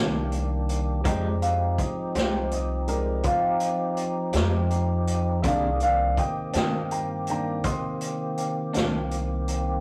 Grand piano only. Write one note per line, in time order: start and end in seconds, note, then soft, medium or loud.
0.00 0.30 G4 medium
1.04 2.11 G3 soft
1.04 2.11 G#3 soft
1.04 2.11 D#4 soft
1.04 1.41 A#5 medium
1.42 1.78 F5 medium
1.79 2.15 D#5 soft
2.15 2.51 C5 medium
2.53 2.88 D#5 soft
2.88 3.21 G3 soft
2.88 3.21 G#3 soft
2.88 3.21 D#4 soft
2.88 3.24 A#4 medium
3.25 3.96 F4 medium
5.42 5.94 D#3 soft
5.42 5.94 A#3 soft
5.42 5.95 D4 soft
5.42 5.80 D5 medium
5.42 5.46 E5 soft
5.47 5.81 F5 medium
5.82 6.17 D5 medium
5.82 6.18 F5 medium
6.18 6.52 D#5 medium
6.18 6.55 G5 medium
6.56 6.90 D#5 medium
6.56 6.90 G5 medium
6.91 7.26 G5 medium
6.91 7.28 A#5 medium
7.30 7.62 D#3 soft
7.30 7.63 A#3 soft
7.30 7.63 D4 soft
7.30 7.64 G5 medium
7.30 7.66 A#5 medium
7.64 8.35 D#5 medium
7.64 8.37 C6 medium